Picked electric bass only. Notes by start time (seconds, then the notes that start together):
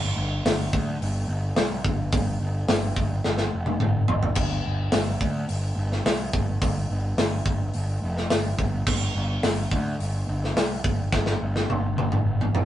Already playing: G1
0.17 G1
0.45 G1
0.73 D2
1.01 G1
1.28 G1
1.57 C2
1.84 G1
2.13 G1
2.40 G1
2.69 G1
2.97 G1
3.25 G1
3.53 F1
3.80 G1
4.08 G1
4.36 G1
4.66 G1
4.93 G1
5.21 D2
5.49 G1
5.76 G1
6.06 C2
6.34 G1
6.62 G1
6.89 G1
7.17 G1
7.45 G1
7.75 G1
8.02 F1
8.30 G1
8.59 G1
8.86 G1
9.15 G1
9.44 G1
9.72 D2
10.00 G1
10.28 G1
10.56 C2
10.84 G1
11.13 G1
11.41 G1
11.69 G1
11.96 G1
12.24 G1
12.53 F1